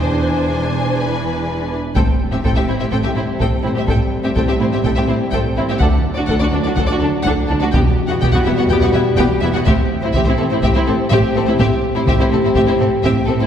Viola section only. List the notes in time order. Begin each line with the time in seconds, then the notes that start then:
0.05 D4
1.96 C4
2.33 C4
2.44 C4
2.56 C4
2.68 C4
2.80 C4
2.92 C4
3.04 C4
3.15 C4
3.40 C4
3.64 C4
3.76 C4
3.88 C4
4.24 C4
4.36 C4
4.48 C4
4.60 C4
4.73 C4
4.85 C4
4.97 C4
5.09 C4
5.33 C4
5.58 C4
5.69 C4
5.81 D4
6.18 D4
6.29 D4
6.41 D4
6.52 D4
6.65 D4
6.77 D4
6.89 D4
7.02 D4
7.26 D4
7.50 D4
7.62 D4
7.75 B3
8.11 B3
8.22 B3
8.34 B3
8.47 B3
8.59 B3
8.72 B3
8.83 B3
8.95 B3
9.19 B3
9.44 B3
9.55 B3
9.67 C4
10.03 C4
10.15 C4
10.28 C4
10.39 C4
10.51 C4
10.63 C4
10.76 C4
10.88 C4
11.12 C4
11.36 C4
11.47 C4
11.59 C4
11.96 C4
12.07 C4
12.20 C4
12.32 C4
12.44 C4
12.56 C4
12.68 C4
12.80 C4
13.04 C4
13.28 C4
13.39 C4